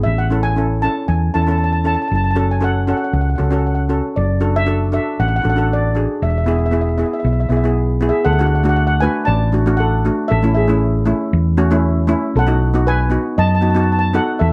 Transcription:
0.03 fingered electric bass A1, steel pan E5
0.18 steel pan F#5
0.30 steel pan C#4 E4 A4
0.43 steel pan G#5
0.56 steel pan C#4 E4 A4
0.82 steel pan C#4 E4 A4 A5
1.08 fingered electric bass E2, steel pan G#5
1.34 fingered electric bass E2, steel pan C#4 E4 A4 A5
1.42 steel pan A5
1.47 steel pan C#4 E4 A4 A5
1.58 steel pan A5
1.64 steel pan A5
1.73 steel pan A5
1.84 steel pan C#4 E4 A4 A5
1.95 steel pan A5
2.02 steel pan A5
2.08 fingered electric bass F#1, steel pan A5
2.15 steel pan A5
2.24 steel pan A5
2.31 steel pan A5
2.35 steel pan C#4 F#4 A4
2.39 steel pan A5
2.51 steel pan G#5
2.61 steel pan C#4 F#4 A4 F#5
2.87 steel pan C#4 F#4 A4 F#5
2.97 steel pan F#5
3.04 steel pan F#5
3.13 fingered electric bass C#2, steel pan F#5
3.21 steel pan F#5
3.30 steel pan F#5
3.36 fingered electric bass C#2, steel pan C#4 F#4 A4 F#5
3.44 steel pan F#5
3.51 steel pan C#4 F#4 A4 F#5
3.59 steel pan F#5
3.66 steel pan F#5
3.75 steel pan F#5
3.89 steel pan C#4 F#4 A4
4.16 fingered electric bass F#1, steel pan D5
4.41 steel pan D4 F#4 A4
4.56 steel pan E5
4.66 steel pan D4 F#4 A4
4.92 steel pan D4 F#4 A4 E5
5.20 fingered electric bass A1, steel pan F#5
5.28 steel pan F#5
5.36 steel pan F#5
5.42 fingered electric bass A1, steel pan D4 F#4 A4 F#5
5.50 steel pan F#5
5.56 steel pan D4 F#4 A4 F#5
5.73 steel pan D5
5.95 steel pan D4 F#4 G#4
6.22 fingered electric bass E1, steel pan E5
6.30 steel pan E5
6.38 steel pan E5
6.44 steel pan B3 E4 G#4 E5
6.51 steel pan E5
6.58 steel pan E5
6.66 steel pan E5
6.71 steel pan B3 E4 G#4 E5
6.81 steel pan E5
6.89 steel pan E5
6.98 steel pan B3 E4 G#4 E5
7.06 steel pan E5
7.13 steel pan E5
7.20 steel pan E5
7.24 fingered electric bass B1, steel pan E5
7.33 steel pan E5
7.40 steel pan E5
7.49 fingered electric bass B1, steel pan B3 E4 G#4 E5
7.57 steel pan E5
7.64 steel pan B3 E4 G#4
8.01 steel pan B3 E4 G#4
8.09 steel pan G#4 E5
8.25 fingered electric bass D2, steel pan A4 F#5
8.33 steel pan F#5
8.39 steel pan A3 D4 F#4 F#5
8.46 steel pan F#5
8.55 steel pan F#5
8.63 steel pan A3 D4 F#4 F#5
8.69 steel pan F#5
8.76 steel pan F#5
8.87 steel pan F#5
9.00 steel pan A3 D4 F#4 B4 G#5
9.25 fingered electric bass A1, steel pan D5 A5
9.52 steel pan A3 D4 F#4
9.66 steel pan A3 D4 F#4
9.77 steel pan A4 F#5
10.05 steel pan A3 D4 F#4
10.28 fingered electric bass A1, steel pan A4 E5
10.42 steel pan A3 C#4 E4
10.54 steel pan G#4 E5
10.68 steel pan A3 C#4 E4
11.06 steel pan A3 C#4 E4
11.33 fingered electric bass E2
11.57 steel pan A3 C#4 F#4
11.71 steel pan A3 C#4 E4
12.07 steel pan A3 C#4 E4
12.36 fingered electric bass B1, steel pan A4 F#5
12.47 steel pan B3 D#4 F#4
12.74 steel pan B3 D#4 F#4
12.87 steel pan B4 G#5
13.10 steel pan B3 D#4 F#4
13.38 fingered electric bass F#2, steel pan D#5 A5
13.48 steel pan A5
13.55 steel pan A5
13.61 steel pan B3 D#4 F#4 A5
13.70 steel pan A5
13.75 steel pan B3 D#4 F#4 A5
13.83 steel pan A5
13.92 steel pan A5
13.99 steel pan A5
14.14 steel pan B3 D#4 F#4 A4 F#5
14.39 fingered electric bass E2, steel pan A4 E5
14.48 steel pan E5

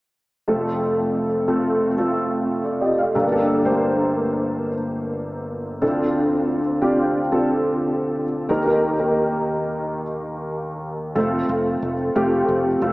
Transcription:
0.48 grand piano F1 F2 A3 C4 F4 A4
1.48 grand piano A3 C4 F4 A4
1.98 grand piano A3 C4 F4 A4
2.65 grand piano F4 D5
2.81 grand piano G4 D#5
2.98 grand piano A4 F5
3.15 grand piano G1 G2 A#3 D4 G4 A4
3.32 grand piano A#3 D4 G4 A4
3.65 grand piano A3 D4 G4 C5
3.71 grand piano A#3
5.82 grand piano D2 D3 C4 D4 E4 A4
5.88 grand piano F4
6.82 grand piano C4 D4 F4 G4
7.32 grand piano C4 D4 F4 A4
8.49 grand piano D#2 D#3 A#3 D#4 G4 A#4
8.66 grand piano A#3 D#4 G4 A#4
8.99 grand piano A#3 D#4 G4 A#4
11.15 fingered electric bass F1, grand piano A3 C4 F4 A4
11.49 fingered electric bass F1
11.82 fingered electric bass F1
12.15 fingered electric bass F1, grand piano A3 C4 F4 G4
12.48 fingered electric bass F1
12.82 fingered electric bass F1, grand piano A3 C4 F4 A4

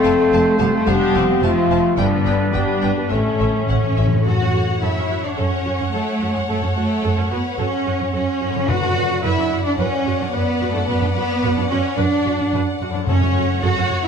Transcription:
Already playing: harp F2 F4, cello section A3, clarinet C4, french horn section A4, oboe C5, flute F5
0.03 double bass section F1, viola section C4, harp A4, violin section C5 F5 A5
0.20 harp F5
0.31 double bass section F1, viola section A3, violin section C5 F5 A5, harp A5
0.46 harp C6
0.58 double bass section F1, cello section G3, clarinet B3, french horn section G4, violin section C5 F5 A5, harp F5
0.73 cello section A3, clarinet C4, french horn section A4
0.86 double bass section F1, harp C3, cello section G3, clarinet B3, viola section D4, french horn section G4, violin section C5 F5 A5
1.13 double bass section F1, viola section C4, violin section C5 F5 A5, harp C5
1.29 harp F5
1.42 double bass section F1, cello section F3, clarinet A3, french horn section F4, violin section C5 F5 A5, harp A5
1.57 harp C6
1.70 double bass section F1, violin section C5 F5 A5, harp F5
1.85 harp C5
1.97 double bass section G1, harp G2, cello section D3, clarinet G3, viola section B3, french horn section D4, violin section B4 D5 G5, oboe B4, flute D5
2.12 harp D4
2.25 double bass section G1, violin section B4 D5 G5, harp B4
2.40 harp D5
2.53 double bass section G1, cello section G3, clarinet B3, viola section D4, french horn section G4, violin section B4 D5 G5, harp G5
2.69 harp B5
2.82 double bass section G1, violin section B4 D5 G5, harp D5
2.97 cello section B3, clarinet D4, french horn section B4, harp B4
3.09 double bass section A1, harp A2, timpani A2, cello section A3, viola section C#4, clarinet C#4, french horn section A4, oboe C#5, violin section C#5 E5, flute E5
3.20 timpani A2
3.26 harp C#4
3.35 timpani A2
3.40 double bass section A1, timpani A2, harp A4, violin section C#5 E5
3.51 timpani A2
3.55 timpani A2, harp C#5
3.66 double bass section A1, timpani A2, cello section C#4, violin section C#5 F#5, harp E5
3.75 timpani A2
3.83 timpani A2, harp A5
3.91 timpani A2
3.97 double bass section A1, timpani A2, harp C#5, violin section C#5 E5
4.07 harp F#2, timpani A2
4.12 timpani A2, harp C#4 A4
4.17 harp F#4
4.22 harp A4, violin section C#5 F#5
4.26 double bass section F#2, cello section F#4, viola section A4 C#5, violin section F#5
4.41 double bass section F#2, viola section C#4
4.54 double bass section F#2, viola section F#4
4.82 double bass section F#2, cello section E4, viola section A4, violin section E5
4.96 double bass section F#2, viola section C#4
5.10 double bass section F#2, viola section F#4
5.23 cello section D4, violin section D5
5.37 double bass section F#2, cello section C#4, viola section A4, violin section C#5
5.65 double bass section F#2, viola section F#4
5.79 double bass section F#2, viola section C#4
5.93 double bass section F#2, cello section A3, violin section A4, viola section A4
6.21 double bass section F#2, viola section F#4
6.33 double bass section F#2, cello section G#3, viola section C#4, violin section G#4
6.48 double bass section F#2, cello section A3, viola section A4, violin section A4
6.62 double bass section F#2, viola section C#4
6.76 double bass section F#2, cello section A3, viola section F#4, violin section A4
7.03 double bass section F#2, viola section A4
7.17 double bass section F#2, viola section C#4
7.31 double bass section F#2, cello section B3, viola section F#4, violin section B4
7.58 double bass section F#2, cello section C#4, viola section A4, violin section C#5
7.85 double bass section F#2, viola section F#4
7.99 double bass section F#2, viola section C#4
8.12 double bass section F#2, cello section C#4, viola section A4, violin section C#5
8.40 double bass section F#2, viola section F#4
8.50 harp F#2, viola section C#4
8.55 double bass section F#2, harp D3
8.59 harp F#4
8.64 harp B4
8.68 timpani F#2, double bass section F#2, cello section F#4, viola section B4, violin section D5 F#5
8.82 double bass section F#2, viola section D4
8.96 double bass section F#2, viola section F#4
9.23 double bass section F#2, cello section E4, viola section B4, violin section E5
9.37 double bass section F#2, viola section D4
9.51 double bass section F#2, viola section F#4
9.65 cello section D4, violin section D5
9.78 double bass section F#2, cello section C#4, viola section B4, violin section C#5
10.05 double bass section F#2, viola section F#4
10.20 double bass section F#2, viola section D4
10.33 double bass section F#2, cello section B3, viola section B4, violin section B4
10.61 double bass section F#2, viola section F#4
10.73 double bass section F#2, cello section A3, viola section D4, violin section A4
10.86 double bass section F#2, cello section B3, violin section B4, viola section B4
11.01 double bass section F#2, viola section D4
11.13 double bass section F#2, cello section B3, viola section F#4, violin section B4
11.42 double bass section F#2, viola section B4
11.56 double bass section F#2, viola section D4
11.69 double bass section F#2, cello section C#4, viola section F#4, violin section C#5
11.97 double bass section F#2, cello section D4, viola section B4, violin section D5
12.25 double bass section F#2, viola section F#4
12.39 double bass section F#2, viola section D4
12.53 double bass section F#2, viola section B4
12.80 double bass section F#2, viola section F#4
12.90 harp F#2
12.94 double bass section F#2, harp C#4, viola section D4
12.98 harp F#4
13.03 timpani F#2, harp A3
13.07 double bass section F#2, cello section C#4, viola section A4 C#5, violin section C#5 F#5
13.21 double bass section F#2, viola section C#4
13.36 double bass section F#2, viola section F#4
13.61 double bass section F#2, cello section F#4, viola section A4, violin section F#5
13.77 double bass section F#2, viola section C#4
13.90 double bass section F#2, viola section F#4
14.04 cello section E4, violin section E5

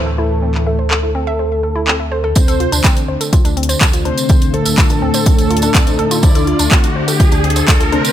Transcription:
Already playing: detuned saw bass D2, analog synth pad A2 E3 A3
0.06 synth pluck A4
0.18 synth pluck E4, analog synth lead A4
0.42 synth pluck C4
0.55 clap
0.67 analog synth lead A4, synth pluck E5
0.79 synth pluck C5
0.91 synth pluck A4, clap
1.03 synth pluck E4
1.15 synth pluck C4
1.27 synth pluck E5
1.39 synth pluck C5
1.63 synth pluck A4
1.76 synth pluck E4
1.87 synth pluck C4, clap
2.00 synth pluck E5
2.12 synth pluck C5
2.24 synth pluck A4
2.35 synth drone D3 A3, analog synth lead C4, synth pluck C5, analog polysynth C5, kick, closed hi-hat, tambourine, riser
2.48 synth pluck A4, closed hi-hat, tambourine
2.60 synth pluck F4, closed hi-hat
2.72 detuned saw bass D2, analog synth pad D3 A3 D4, synth pluck D4, closed hi-hat, tambourine
2.84 synth pluck C4, kick, clap, closed hi-hat, tambourine
2.97 closed hi-hat, tambourine
3.08 detuned saw bass D2, synth pluck C5
3.21 synth pluck A4, closed hi-hat, tambourine
3.33 synth pluck F4, kick, closed hi-hat, tambourine
3.45 detuned saw bass D2, synth pluck D4, closed hi-hat, tambourine
3.57 synth pluck C4, closed hi-hat
3.63 closed hi-hat
3.69 synth pluck C5, closed hi-hat, tambourine
3.81 detuned saw bass D2, synth pluck A4, kick, clap, closed hi-hat, tambourine
3.93 synth pluck F4, closed hi-hat, tambourine
4.05 analog synth lead C4, synth pluck D4, analog polysynth C5, closed hi-hat
4.18 closed hi-hat, tambourine
4.29 detuned saw bass D2, synth pluck C4, kick, closed hi-hat, tambourine
4.42 closed hi-hat, tambourine
4.54 analog synth lead A3, analog polysynth A4, synth pluck C5, closed hi-hat
4.65 detuned saw bass D2, analog synth pad D3 A3 D4, synth pluck A4, closed hi-hat, tambourine
4.78 synth pluck F4, kick, clap, closed hi-hat, tambourine
4.90 synth pluck D4, closed hi-hat, tambourine
5.02 detuned saw bass D2, synth pluck C4
5.14 synth pluck C5, closed hi-hat, tambourine
5.26 synth pluck A4, kick, closed hi-hat, tambourine
5.38 detuned saw bass D2, closed hi-hat, tambourine
5.50 synth pluck F4, closed hi-hat
5.57 closed hi-hat
5.62 synth pluck D4, closed hi-hat, tambourine
5.74 detuned saw bass D2, synth pluck C4, kick, clap, closed hi-hat, tambourine
5.87 synth pluck C5, closed hi-hat, tambourine
5.99 synth pluck A4, closed hi-hat
6.11 synth pluck F4, closed hi-hat, tambourine
6.23 detuned saw bass D2, analog synth lead D4, synth pluck C5, analog polysynth D5, kick, closed hi-hat, tambourine
6.35 synth pluck A4, closed hi-hat, tambourine
6.47 synth pluck F4, closed hi-hat
6.59 detuned saw bass D2, analog synth pad D3 A3 D4, synth pluck D4, closed hi-hat, tambourine
6.71 synth pluck C4, kick, clap, closed hi-hat
6.84 closed hi-hat, tambourine
6.96 detuned saw bass D2, synth pluck C5
7.08 synth pluck A4, closed hi-hat, tambourine
7.20 synth pluck F4, kick, closed hi-hat, tambourine
7.32 detuned saw bass D2, synth pluck D4, closed hi-hat, tambourine
7.44 synth pluck C4, closed hi-hat
7.50 closed hi-hat
7.56 synth pluck C5, closed hi-hat, tambourine
7.68 detuned saw bass D2, synth pluck A4, kick, clap, closed hi-hat, tambourine
7.80 synth pluck F4, closed hi-hat, tambourine
7.92 analog synth lead C4, synth pluck D4, analog polysynth C5, closed hi-hat
8.05 closed hi-hat, tambourine

